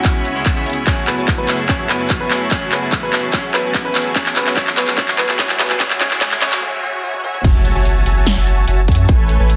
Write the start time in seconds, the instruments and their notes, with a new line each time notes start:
Already playing: ambient pad C#2 C#3 B3 E4 G#4, clean electric guitar G#3 B3 C#4 E4 G#4, supersaw synth C#4 C#5 E5 G#5 B5, grand piano F#4 F#5
0.05 kick, clap, closed hi-hat
0.15 supersaw synth C#4 C#5 E5 G#5 B5
0.25 closed hi-hat
0.35 clean electric guitar G#3 B3 C#4 E4 G#4
0.46 supersaw synth C#4 C#5 E5 G#5 B5, kick, clap, closed hi-hat
0.55 clean electric guitar G#3 B3 C#4 E4 G#4
0.66 closed hi-hat
0.70 closed hi-hat
0.73 closed hi-hat
0.85 ambient pad F#2 A3, clean electric guitar F#3 A3 C#4 E4, grand piano C#4 C#5, supersaw synth F#4 C#5 E5 G#5 A5, kick, clap, closed hi-hat, riser
0.89 clean electric guitar G#4
1.07 grand piano B3 B4, clap, closed hi-hat
1.18 supersaw synth F#4 C#5 E5 G#5 A5
1.28 kick, clap, closed hi-hat
1.38 grand piano B3 B4
1.46 clean electric guitar F#3 A3 C#4 E4 G#4, supersaw synth F#4 C#5 E5 G#5 A5, clap, closed hi-hat
1.67 clean electric guitar F#3 A3 C#4, grand piano C#4 C#5, supersaw synth F#4 C#5 E5 G#5 A5, kick, clap, closed hi-hat
1.71 clean electric guitar G#4
1.89 grand piano B3 B4, clap, closed hi-hat
2.00 supersaw synth F#4 C#5 E5 G#5 A5
2.10 kick, clap, closed hi-hat
2.20 grand piano B3 B4
2.29 clean electric guitar F#3 A3 C#4 E4, supersaw synth F#4 C#5 E5 G#5 A5, clap, closed hi-hat
2.33 clean electric guitar G#4, closed hi-hat
2.37 closed hi-hat
2.49 ambient pad A2 E3 B3 C#4 G#4, clean electric guitar F#3 A3 C#4 E4, grand piano C#4 C#5, supersaw synth F#4 C#5 E5 G#5 A5, kick, clap, closed hi-hat
2.53 clean electric guitar G#4
2.72 grand piano B3 B4, clap, closed hi-hat
2.82 supersaw synth F#4 C#5 E5 G#5 A5
2.92 kick, clap, closed hi-hat
3.03 grand piano B3 B4
3.11 clean electric guitar F#3 A3 C#4 E4, supersaw synth F#4 C#5 E5 G#5 A5, clap, closed hi-hat
3.15 clean electric guitar G#4
3.31 clean electric guitar F#3 A3 C#4 E4, grand piano C#4 C#5, supersaw synth F#4 C#5 E5 G#5 A5, kick, clap, closed hi-hat
3.35 clean electric guitar G#4
3.54 grand piano B3 B4, clap, closed hi-hat
3.64 supersaw synth F#4 C#5 E5 G#5 A5
3.74 kick, clap, closed hi-hat
3.85 grand piano B3 B4
3.93 clean electric guitar F#3 A3 C#4 E4 G#4, supersaw synth F#4 C#5 E5 G#5 A5, clap, closed hi-hat
3.99 closed hi-hat
4.02 closed hi-hat
4.13 ambient pad D2 D3 E4 F#4, clean electric guitar F#3 A3 C#4, grand piano C#4 C#5, supersaw synth F#4 C#5 E5 G#5 A5, kick, clap, closed hi-hat
4.18 clean electric guitar G#4
4.26 clap
4.36 grand piano B3 B4, clap, closed hi-hat
4.46 supersaw synth F#4 C#5 E5 G#5 A5, clap
4.55 clean electric guitar F#3 A3 C#4 E4, grand piano C#4 C#5, supersaw synth F#4 C#5 E5 G#5 A5, kick, clap, closed hi-hat
4.59 clean electric guitar G#4
4.67 clap
4.77 grand piano B3 B4, clap, closed hi-hat
4.87 supersaw synth F#4 C#5 E5 G#5 A5, clap
4.96 clean electric guitar F#3 A3 C#4 E4, grand piano C#4 C#5, supersaw synth F#4 C#5 E5 G#5 A5, kick, clap, closed hi-hat
5.00 clean electric guitar G#4
5.08 clap
5.18 grand piano B3 B4, clap, closed hi-hat
5.29 supersaw synth F#4 C#5 E5 G#5 A5, clap
5.37 clean electric guitar F#3 A3 C#4 E4 G#4, grand piano C#4 C#5, supersaw synth F#4 C#5 E5 G#5 A5, kick, clap, closed hi-hat
5.49 clap
5.59 grand piano B3 B4, clap, closed hi-hat
5.63 closed hi-hat
5.66 supersaw synth F#4 C#5 E5 G#5 A5, clap, closed hi-hat
5.78 ambient pad C#2 C#3 G#4, clean electric guitar F#3 G#3 C#4 E4, grand piano C#4 C#5, supersaw synth F#4 C#5 E5 G#5, kick, clap, closed hi-hat, noise sweep
5.82 clean electric guitar G#4
5.90 clap
5.98 clean electric guitar F#3 G#3 C#4 E4 G#4, grand piano C#4 C#5, supersaw synth F#4 C#5 E5 G#5, clap, closed hi-hat
6.11 clap
6.19 clean electric guitar F#3 G#3 C#4 E4, grand piano C#4 C#5, supersaw synth F#4 C#5 E5 G#5, kick, clap, closed hi-hat
6.23 clean electric guitar G#4
6.31 clap
6.40 clean electric guitar F#3 G#3 C#4 E4 G#4, grand piano C#4 C#5, supersaw synth F#4 C#5 E5 G#5, clap, closed hi-hat
6.52 clap
6.62 supersaw synth F#4 C#5 E5 G#5
6.83 supersaw synth F#4 C#5 E5 G#5
7.03 supersaw synth F#4 C#5 E5 G#5
7.14 high tom
7.24 supersaw synth F#4 C#5 E5 G#5, mid tom
7.34 mid tom
7.44 sub bass F#1, supersaw synth F#4 C#5 E5 G#5 A5, kick, closed hi-hat, crash, impact
7.65 closed hi-hat
7.75 sub bass F#1, supersaw synth F#4 C#5 E5 G#5 A5
7.85 closed hi-hat
8.06 sub bass F#1, supersaw synth F#4 C#5 E5 G#5 A5, closed hi-hat
8.27 snare, closed hi-hat
8.37 sub bass F#1, supersaw synth F#4 C#5 E5 G#5 A5
8.47 closed hi-hat
8.68 sub bass F#1, supersaw synth F#4 C#5 E5 G#5 A5, closed hi-hat
8.88 sub bass F#2, supersaw synth F#4 C#5 E5 G#5 A5, kick, closed hi-hat
8.92 closed hi-hat
8.95 closed hi-hat
9.09 sub bass A1, supersaw synth A3 A4 B4 C#5 G#5, kick, closed hi-hat
9.29 closed hi-hat
9.39 sub bass A1, supersaw synth A3 A4 B4 C#5 G#5
9.50 closed hi-hat